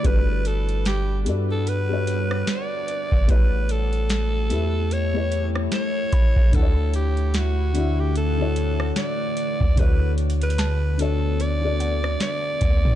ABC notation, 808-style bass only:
X:1
M:4/4
L:1/16
Q:"Swing 16ths" 1/4=74
K:D
V:1 name="808-style bass" clef=bass
G,,,6 G,,6 z3 G,,, | A,,,6 E,,6 z2 A,,, A,,, | D,,12 z3 D,, | D,,12 z2 D,, A,, |]